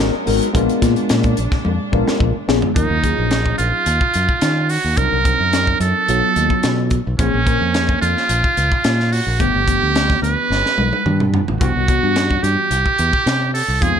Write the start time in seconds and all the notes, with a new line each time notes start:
Already playing: F#3 G#3 B3 D#4 F#4 A#4
0.00 G#1, snare
0.26 G#1 G#3 B3 D#4 F#4 A#4, open hi-hat
0.42 closed hi-hat
0.53 A#1 A#2 G#3 B3 D4 F4 A#4, kick, closed hi-hat
0.69 closed hi-hat
0.82 A#2, kick, snare, closed hi-hat
0.96 closed hi-hat
1.09 A#2, snare, closed hi-hat
1.23 kick, closed hi-hat
1.37 A#1, closed hi-hat
1.52 kick, snare
1.65 F2, high tom
1.92 A#1 G#3 B3 D4 F4 A#4, kick
2.08 muted fingered electric bass stroke, snare
2.20 A#1, kick
2.36 muted fingered electric bass stroke
2.47 A#1 G#3 B3 D4 F4 G#4, snare
2.62 floor tom
2.75 D#2 F#3 C#4 D#4 F4 A#4, kick, closed hi-hat
2.90 D#2
3.03 F#3 C#4 D#4 F4 G#4, kick, closed hi-hat
3.18 A#1
3.31 snare, closed hi-hat
3.46 kick
3.58 A#1 F4, closed hi-hat
3.86 D#2, closed hi-hat
4.01 kick
4.14 F#2, closed hi-hat
4.29 kick
4.41 D#3, snare, closed hi-hat
4.69 F#4, open hi-hat
4.84 D#2
4.96 C2 F#3 C4 D4 D#4 A#4, kick, closed hi-hat
5.12 C2
5.24 F#3 C4 D4 D#4 A#4, kick, closed hi-hat
5.40 F#2
5.53 snare, closed hi-hat
5.67 kick
5.80 F#2 A4, closed hi-hat
6.08 B1 F#3 B3 D#4 F4 A4, closed hi-hat
6.36 D#2, closed hi-hat
6.50 kick
6.63 B2, snare, closed hi-hat
6.90 kick, closed hi-hat
7.07 B1
7.18 A#1 F3 A#3 C4 C#4 G#4, kick, closed hi-hat
7.34 A#1
7.46 F3 A#3 C#4 A#4 C5, kick, closed hi-hat
7.61 F2
7.74 snare, closed hi-hat
7.89 kick
8.01 F2 F4, closed hi-hat
8.17 snare
8.29 A#1, closed hi-hat
8.44 kick
8.57 C#2, closed hi-hat
8.72 kick
8.84 A#2, snare, closed hi-hat
9.00 snare
9.12 F#4, open hi-hat
9.27 A#1
9.38 G1 F3 A3 B3 D4 G4, kick, closed hi-hat
9.54 G1
9.67 F3 A3 B3 D4 G4, kick, closed hi-hat
9.82 D2
9.95 snare, closed hi-hat
10.10 kick, snare
10.22 D2 B4, closed hi-hat
10.50 G1, snare
10.66 snare
10.78 B1, high tom
10.93 high tom
11.06 G2, mid tom
11.20 mid tom
11.34 floor tom
11.48 A1, floor tom
11.59 C2 E3 G3 B3 D4 F#4, kick, closed hi-hat
11.76 C2
11.88 E3 G3 B3 D4 F#4, kick, closed hi-hat
12.03 G2
12.16 snare, closed hi-hat
12.31 kick
12.43 G2 G4, closed hi-hat
12.71 C2, closed hi-hat
12.86 kick
12.98 E2, closed hi-hat
13.13 kick
13.26 C3, snare, closed hi-hat
13.54 A4, open hi-hat
13.68 C2
13.80 F2 F3 G#3 B3 D#4 F4 G#4, kick, closed hi-hat
13.96 F2